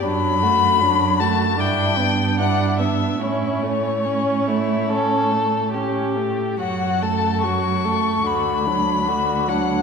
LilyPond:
<<
  \new Staff \with { instrumentName = "Violin" } { \time 4/4 \key a \mixolydian \tempo 4 = 73 b''4. a''8 g''4 fis''8 e''8 | cis''2. r4 | fis''8 a''8 cis'''4 b''4. fis''8 | }
  \new Staff \with { instrumentName = "Violin" } { \time 4/4 \key a \mixolydian d'8 fis'8 d'8 fis'8 e'8 d'8 e'8 d'8 | e'8 cis'8 cis'8 e'8 a'4 g'4 | fis'8 a'8 fis'8 a'8 fis'8 d'8 fis'8 d'8 | }
  \new Staff \with { instrumentName = "Viola" } { \time 4/4 \key a \mixolydian fis8 a8 fis8 a8 d'8 b8 d'8 b8 | cis'8 a8 cis'8 a8 cis'8 a8 cis'8 a8 | fis8 a8 fis8 a8 d8 fis8 d8 fis8 | }
  \new Staff \with { instrumentName = "Cello" } { \clef bass \time 4/4 \key a \mixolydian fis,2 g,2 | a,2.~ a,8. r16 | fis,2 d,2 | }
>>